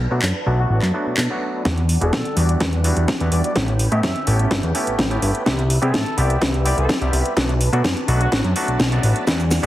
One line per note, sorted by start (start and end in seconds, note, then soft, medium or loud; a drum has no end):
0.00 1.63 D4 medium
0.00 1.63 B4 medium
0.00 1.64 A5 medium
0.11 0.20 B2 loud
0.11 0.21 F#3 medium
0.11 0.21 A3 medium
0.11 0.21 B3 medium
0.11 0.21 D4 medium
0.11 0.21 F#4 loud
0.22 0.32 F#2 medium
0.22 clap loud
0.46 0.65 B1 medium
0.46 0.91 F#3 medium
0.46 0.91 A3 medium
0.46 0.91 B3 medium
0.46 0.91 D4 medium
0.46 0.92 F#4 loud
0.59 0.66 F#4 medium
0.70 0.80 A1 loud
0.70 0.78 F#4 medium
0.82 0.92 F#2 loud
0.82 clap soft
0.94 1.27 F#3 medium
0.94 1.27 A3 medium
0.94 1.27 B3 medium
0.94 1.27 D4 medium
0.94 1.27 F#4 medium
1.06 1.16 B2 soft
1.17 1.28 B2 loud
1.17 clap loud
1.30 1.62 F#3 medium
1.30 1.63 A3 medium
1.30 1.63 B3 medium
1.30 1.63 D4 medium
1.30 1.63 F#4 medium
1.65 1.97 E2 loud
1.65 1.82 G3 medium
1.65 3.54 G3 medium
1.65 1.82 B3 medium
1.65 1.82 D4 medium
1.65 3.54 D4 medium
1.65 1.82 E4 medium
1.65 3.54 F#5 medium
1.65 kick loud
1.65 snare soft
1.65 closed hi-hat medium
1.78 closed hi-hat soft
1.89 open hi-hat loud
2.01 2.11 E1 loud
2.01 2.11 G3 medium
2.01 2.11 B3 medium
2.01 2.11 D4 medium
2.01 2.12 E4 medium
2.01 2.12 F#4 loud
2.01 2.35 A4 medium
2.01 closed hi-hat medium
2.13 2.23 B2 medium
2.13 kick loud
2.13 snare soft
2.13 closed hi-hat medium
2.25 closed hi-hat soft
2.36 2.56 E2 loud
2.36 2.82 G3 medium
2.36 2.82 B3 medium
2.36 2.82 D4 medium
2.36 2.82 E4 medium
2.36 2.82 F#4 medium
2.36 2.53 D5 medium
2.36 open hi-hat medium
2.49 closed hi-hat medium
2.60 2.93 E2 medium
2.60 kick loud
2.60 snare medium
2.60 closed hi-hat medium
2.73 closed hi-hat soft
2.84 3.17 G3 medium
2.84 3.18 B3 medium
2.84 3.18 D4 medium
2.84 3.18 E4 medium
2.84 3.18 F#4 medium
2.84 open hi-hat loud
2.97 3.06 E2 medium
2.97 closed hi-hat medium
3.08 kick loud
3.08 snare soft
3.08 closed hi-hat medium
3.20 3.30 E2 medium
3.20 3.53 G3 medium
3.20 3.53 B3 medium
3.20 3.53 D4 medium
3.20 3.53 E4 medium
3.20 3.53 F#4 medium
3.20 closed hi-hat soft
3.32 3.42 E2 medium
3.32 3.40 D5 medium
3.32 open hi-hat medium
3.44 3.52 D5 medium
3.44 closed hi-hat medium
3.56 3.88 A1 loud
3.56 3.73 A3 medium
3.56 3.73 B3 medium
3.56 5.44 C#4 medium
3.56 3.73 C#4 medium
3.56 3.73 E4 medium
3.56 3.73 G4 medium
3.56 9.23 B4 medium
3.56 5.44 G5 medium
3.56 kick loud
3.56 snare medium
3.56 closed hi-hat medium
3.68 closed hi-hat soft
3.79 open hi-hat loud
3.92 4.01 A2 loud
3.92 4.02 A3 medium
3.92 4.02 B3 medium
3.92 4.02 C#4 medium
3.92 4.02 E4 medium
3.92 4.02 G4 loud
3.92 4.27 E5 medium
3.92 closed hi-hat soft
4.03 4.13 F#2 medium
4.03 kick loud
4.03 snare medium
4.03 closed hi-hat medium
4.16 closed hi-hat soft
4.27 4.46 A1 medium
4.27 4.72 A3 medium
4.27 4.72 B3 medium
4.27 4.72 C#4 medium
4.27 4.72 E4 medium
4.27 4.72 G4 loud
4.27 open hi-hat medium
4.39 closed hi-hat medium
4.51 4.61 G1 loud
4.51 kick loud
4.51 snare medium
4.51 closed hi-hat medium
4.63 4.72 E2 loud
4.63 closed hi-hat soft
4.74 5.08 A3 medium
4.74 5.08 B3 medium
4.74 5.08 C#4 medium
4.74 5.08 E4 medium
4.74 5.08 G4 medium
4.74 open hi-hat loud
4.87 4.96 A1 soft
4.87 closed hi-hat medium
4.99 5.18 A1 loud
4.99 kick loud
4.99 snare medium
4.99 closed hi-hat medium
5.10 5.43 A3 medium
5.10 5.43 B3 medium
5.10 5.43 C#4 medium
5.10 5.44 E4 medium
5.10 5.44 G4 medium
5.10 closed hi-hat soft
5.22 5.32 G1 medium
5.22 open hi-hat loud
5.35 closed hi-hat medium
5.46 5.78 C2 loud
5.46 5.63 G3 medium
5.46 5.63 B3 medium
5.46 5.63 C4 medium
5.46 5.63 E4 medium
5.46 5.63 G4 medium
5.46 7.35 E5 medium
5.46 kick loud
5.46 snare medium
5.46 closed hi-hat soft
5.59 closed hi-hat soft
5.70 open hi-hat loud
5.82 5.91 C3 loud
5.82 5.92 G3 medium
5.82 5.92 B3 medium
5.82 5.92 C4 medium
5.82 5.92 E4 medium
5.82 5.93 G4 loud
5.82 6.15 A4 medium
5.82 closed hi-hat soft
5.94 6.04 A2 medium
5.94 kick loud
5.94 snare medium
5.94 closed hi-hat soft
6.06 closed hi-hat soft
6.17 6.37 C2 loud
6.17 6.62 G3 medium
6.17 6.63 B3 medium
6.17 6.63 C4 medium
6.17 6.63 E4 medium
6.17 6.63 G4 loud
6.17 6.34 D5 medium
6.17 open hi-hat loud
6.30 closed hi-hat medium
6.42 6.74 C2 medium
6.42 kick loud
6.42 snare medium
6.42 closed hi-hat medium
6.54 closed hi-hat soft
6.65 6.98 G3 medium
6.65 6.98 B3 medium
6.65 6.99 C4 medium
6.65 6.99 E4 medium
6.65 6.99 G4 medium
6.65 6.75 D5 medium
6.65 open hi-hat loud
6.77 6.87 C2 medium
6.77 6.93 A4 medium
6.77 closed hi-hat medium
6.89 kick loud
6.89 snare medium
6.89 closed hi-hat soft
7.01 7.11 C2 medium
7.01 7.34 G3 medium
7.01 7.34 B3 medium
7.01 7.34 C4 medium
7.01 7.34 E4 medium
7.01 7.34 G4 medium
7.01 closed hi-hat soft
7.13 7.23 C2 medium
7.13 open hi-hat loud
7.25 closed hi-hat medium
7.37 7.69 B1 loud
7.37 7.54 F#3 medium
7.37 7.54 A3 medium
7.37 7.54 B3 medium
7.37 9.25 D4 medium
7.37 7.54 D4 medium
7.37 7.54 F#4 medium
7.37 9.25 A5 medium
7.37 kick loud
7.37 snare medium
7.37 closed hi-hat medium
7.49 closed hi-hat soft
7.61 open hi-hat loud
7.73 7.82 B2 loud
7.73 7.83 F#3 medium
7.73 7.83 A3 medium
7.73 7.83 B3 medium
7.73 7.83 D4 medium
7.73 7.83 F#4 loud
7.73 closed hi-hat soft
7.84 7.94 F#2 medium
7.84 kick loud
7.84 snare medium
7.84 closed hi-hat soft
7.97 closed hi-hat soft
8.08 8.27 B1 loud
8.08 8.53 F#3 medium
8.08 8.53 A3 medium
8.08 8.53 B3 medium
8.08 8.53 D4 medium
8.08 8.53 F#4 loud
8.08 open hi-hat medium
8.21 8.28 F#4 medium
8.21 closed hi-hat soft
8.32 8.42 A1 loud
8.32 8.40 F#4 medium
8.32 kick loud
8.32 snare medium
8.32 closed hi-hat medium
8.44 8.53 F#2 loud
8.44 closed hi-hat soft
8.56 8.89 F#3 medium
8.56 8.89 A3 medium
8.56 8.89 B3 medium
8.56 8.89 D4 medium
8.56 8.89 F#4 medium
8.56 open hi-hat loud
8.68 8.77 B1 soft
8.68 closed hi-hat medium
8.80 8.99 B1 loud
8.80 kick loud
8.80 snare medium
8.80 closed hi-hat soft
8.92 9.24 F#3 medium
8.92 9.25 A3 medium
8.92 9.25 B3 medium
8.92 9.25 D4 medium
8.92 9.25 F#4 medium
8.92 closed hi-hat soft
9.03 9.13 A1 loud
9.03 open hi-hat loud
9.16 closed hi-hat soft
9.27 9.59 E2 loud
9.27 9.44 G3 medium
9.27 9.44 B3 medium
9.27 9.44 D4 medium
9.27 9.44 E4 medium
9.27 9.45 F#4 medium
9.27 kick loud
9.27 snare medium
9.27 closed hi-hat soft
9.27 cabasa soft
9.40 closed hi-hat soft
9.40 cabasa soft
9.51 snare medium
9.51 open hi-hat loud
9.51 cabasa medium
9.63 9.66 G3 medium